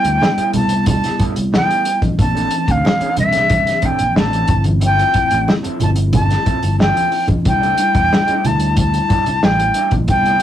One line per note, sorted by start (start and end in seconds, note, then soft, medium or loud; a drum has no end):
0.00 0.54 G3 medium
0.00 0.54 A3 medium
0.00 0.55 B3 medium
0.00 0.55 E4 medium
0.00 0.51 G5 medium
0.04 0.18 D2 medium
0.04 muted clean electric guitar stroke soft
0.04 closed hi-hat medium
0.22 snare loud
0.22 high conga medium
0.38 0.52 G3 medium
0.38 0.52 B3 medium
0.38 0.51 E4 medium
0.38 0.51 A4 medium
0.38 muted fingered electric bass stroke soft
0.38 closed hi-hat soft
0.53 1.07 C2 medium
0.53 1.57 G3 medium
0.53 1.57 A3 medium
0.53 1.58 B3 medium
0.53 1.58 E4 medium
0.53 0.86 A5 medium
0.53 muted clean electric guitar stroke soft
0.53 closed hi-hat medium
0.53 low conga medium
0.69 muted clean electric guitar stroke soft
0.69 closed hi-hat medium
0.86 1.24 A5 medium
0.86 muted clean electric guitar stroke soft
0.86 kick medium
0.86 closed hi-hat medium
0.86 muted conga medium
0.86 low conga medium
1.03 muted clean electric guitar stroke soft
1.03 snare soft
1.03 closed hi-hat soft
1.19 1.33 G3 medium
1.19 1.33 B3 medium
1.19 1.34 E4 medium
1.19 1.34 A4 medium
1.19 muted fingered electric bass stroke soft
1.19 kick medium
1.19 closed hi-hat medium
1.19 muted conga soft
1.36 1.63 C2 medium
1.36 muted clean electric guitar stroke soft
1.36 closed hi-hat medium
1.53 1.83 G3 medium
1.53 1.83 B3 medium
1.53 1.83 E4 medium
1.53 1.84 A4 medium
1.53 2.00 G5 medium
1.53 snare loud
1.53 high conga medium
1.71 closed hi-hat soft
1.85 muted clean electric guitar stroke soft
1.85 closed hi-hat medium
2.02 muted clean electric guitar stroke soft
2.02 kick medium
2.02 closed hi-hat soft
2.02 high conga medium
2.18 2.45 A#1 loud
2.18 2.44 E3 medium
2.18 2.45 A3 medium
2.18 2.45 C4 medium
2.18 2.45 D4 medium
2.18 2.73 A5 medium
2.18 muted clean electric guitar stroke soft
2.18 kick medium
2.18 closed hi-hat medium
2.18 muted conga soft
2.35 2.49 E3 medium
2.35 2.49 C4 medium
2.35 2.49 D4 medium
2.35 2.48 A4 medium
2.35 closed hi-hat soft
2.51 3.03 E3 medium
2.51 3.04 A3 medium
2.51 3.04 C4 medium
2.51 2.59 C#4 medium
2.51 muted clean electric guitar stroke soft
2.51 closed hi-hat medium
2.59 3.07 D4 medium
2.67 2.81 D2 medium
2.67 3.19 F5 medium
2.67 muted clean electric guitar stroke soft
2.67 kick medium
2.67 closed hi-hat medium
2.84 muted clean electric guitar stroke soft
2.84 snare loud
2.84 high conga medium
2.99 3.15 E3 medium
2.99 3.15 C4 medium
2.99 3.16 D4 medium
2.99 3.16 A4 medium
2.99 muted fingered electric bass stroke soft
2.99 closed hi-hat medium
3.16 3.71 C2 medium
3.16 4.21 E3 medium
3.16 4.21 A3 medium
3.16 4.21 C4 medium
3.16 4.21 D4 medium
3.16 3.87 E5 medium
3.16 muted clean electric guitar stroke soft
3.16 closed hi-hat medium
3.16 low conga medium
3.32 muted clean electric guitar stroke soft
3.32 snare soft
3.32 closed hi-hat medium
3.50 muted clean electric guitar stroke soft
3.50 kick medium
3.50 closed hi-hat medium
3.50 muted conga soft
3.66 muted clean electric guitar stroke soft
3.66 snare soft
3.66 closed hi-hat soft
3.82 3.96 E3 medium
3.82 3.97 C4 medium
3.82 3.97 D4 medium
3.82 3.97 A4 medium
3.82 4.17 G5 medium
3.82 muted fingered electric bass stroke soft
3.82 kick medium
3.82 closed hi-hat medium
3.82 muted conga soft
3.99 4.13 A#1 medium
3.99 muted clean electric guitar stroke soft
3.99 closed hi-hat soft
4.15 4.43 A1 medium
4.15 4.46 E3 medium
4.15 4.46 C4 medium
4.15 4.46 D4 medium
4.15 4.46 A4 medium
4.15 4.63 A5 medium
4.15 snare medium
4.15 high conga medium
4.33 closed hi-hat soft
4.47 5.02 G1 medium
4.47 5.01 F3 medium
4.47 5.02 A3 medium
4.47 5.02 C4 medium
4.47 5.02 E4 medium
4.47 muted clean electric guitar stroke soft
4.47 kick loud
4.47 closed hi-hat medium
4.64 muted clean electric guitar stroke soft
4.64 closed hi-hat soft
4.64 high conga medium
4.80 muted clean electric guitar stroke soft
4.80 closed hi-hat medium
4.80 muted conga soft
4.85 5.51 G5 medium
4.96 5.11 F3 medium
4.96 5.11 C4 medium
4.96 5.11 E4 medium
4.96 5.11 A4 medium
4.96 closed hi-hat soft
5.14 5.66 F3 medium
5.14 5.67 A3 medium
5.14 5.22 A#3 soft
5.14 5.67 E4 medium
5.14 muted clean electric guitar stroke soft
5.14 kick medium
5.14 closed hi-hat medium
5.22 5.70 C4 medium
5.30 5.45 A1 medium
5.30 muted clean electric guitar stroke soft
5.30 closed hi-hat medium
5.47 muted clean electric guitar stroke soft
5.47 snare loud
5.47 high conga medium
5.63 5.78 F3 medium
5.63 5.78 C4 medium
5.63 5.77 E4 medium
5.63 5.77 A4 medium
5.63 muted fingered electric bass stroke soft
5.63 closed hi-hat medium
5.80 6.34 G1 medium
5.80 6.84 F3 medium
5.80 6.84 A3 medium
5.80 5.88 A#3 soft
5.80 6.85 E4 medium
5.80 5.90 A5 medium
5.80 muted clean electric guitar stroke soft
5.80 closed hi-hat medium
5.80 low conga medium
5.88 6.88 C4 medium
5.96 muted clean electric guitar stroke soft
5.96 closed hi-hat medium
6.13 6.76 A5 medium
6.13 muted clean electric guitar stroke soft
6.13 kick medium
6.13 closed hi-hat medium
6.13 muted conga medium
6.13 low conga medium
6.30 snare soft
6.30 closed hi-hat soft
6.46 6.57 F3 medium
6.46 6.57 C4 medium
6.46 6.57 E4 medium
6.46 6.57 A4 medium
6.46 muted fingered electric bass stroke soft
6.46 kick medium
6.46 closed hi-hat medium
6.63 6.89 G1 medium
6.63 muted clean electric guitar stroke soft
6.63 closed hi-hat medium
6.79 7.10 F3 medium
6.79 7.10 C4 medium
6.79 7.10 E4 medium
6.79 7.10 A4 medium
6.79 7.26 G5 medium
6.79 snare medium
6.79 high conga medium
6.96 closed hi-hat soft
6.96 high conga soft
7.12 muted clean electric guitar stroke soft
7.12 open hi-hat soft
7.28 muted clean electric guitar stroke soft
7.28 kick medium
7.28 closed hi-hat soft
7.28 high conga medium
7.45 7.72 C2 loud
7.45 7.71 G3 medium
7.45 7.71 A3 medium
7.45 7.71 D4 medium
7.45 7.71 E4 medium
7.45 8.48 G5 medium
7.45 muted clean electric guitar stroke soft
7.45 kick medium
7.45 closed hi-hat medium
7.45 muted conga soft
7.61 7.76 A3 medium
7.61 7.75 D4 medium
7.61 7.75 E4 medium
7.61 7.75 A4 medium
7.61 closed hi-hat soft
7.77 8.30 G3 medium
7.77 8.30 A3 medium
7.77 8.30 D4 medium
7.77 8.31 E4 medium
7.77 muted clean electric guitar stroke soft
7.77 closed hi-hat medium
7.94 8.08 E2 medium
7.94 muted clean electric guitar stroke soft
7.94 kick medium
7.94 closed hi-hat medium
8.10 muted clean electric guitar stroke soft
8.10 snare loud
8.10 high conga medium
8.26 8.42 A3 medium
8.26 8.42 D4 medium
8.26 8.42 E4 medium
8.26 8.42 A4 medium
8.26 muted fingered electric bass stroke soft
8.26 closed hi-hat soft
8.43 8.98 D2 medium
8.43 9.47 G3 medium
8.43 9.48 A3 medium
8.43 9.48 D4 medium
8.43 9.48 E4 medium
8.43 8.78 A5 medium
8.43 muted clean electric guitar stroke soft
8.43 closed hi-hat medium
8.43 low conga medium
8.60 muted clean electric guitar stroke soft
8.60 closed hi-hat medium
8.76 9.46 A5 medium
8.76 muted clean electric guitar stroke soft
8.76 kick medium
8.76 closed hi-hat medium
8.76 muted conga soft
8.93 muted clean electric guitar stroke soft
8.93 closed hi-hat soft
9.09 9.23 A3 medium
9.09 9.23 D4 medium
9.09 9.23 E4 medium
9.09 9.24 A4 medium
9.09 kick medium
9.09 closed hi-hat medium
9.09 muted conga soft
9.26 9.40 C2 medium
9.26 muted clean electric guitar stroke soft
9.26 closed hi-hat medium
9.42 9.70 A1 medium
9.42 9.93 G5 medium
9.42 muted clean electric guitar stroke soft
9.42 snare loud
9.42 high conga medium
9.59 muted clean electric guitar stroke soft
9.59 closed hi-hat soft
9.74 9.89 A3 medium
9.74 9.90 D4 medium
9.74 9.90 E4 medium
9.74 9.90 A4 medium
9.74 closed hi-hat medium
9.91 10.09 A#1 medium
9.91 muted clean electric guitar stroke soft
9.91 kick medium
9.91 closed hi-hat soft
9.91 high conga medium
10.08 10.35 C2 medium
10.08 10.34 G3 medium
10.08 10.35 A3 medium
10.08 10.35 B3 medium
10.08 10.35 E4 medium
10.08 10.43 G5 medium
10.08 muted clean electric guitar stroke soft
10.08 kick medium
10.08 closed hi-hat medium
10.08 muted conga soft
10.25 10.40 G3 medium
10.25 10.40 B3 medium
10.25 10.39 E4 medium
10.25 10.39 A4 medium
10.25 closed hi-hat soft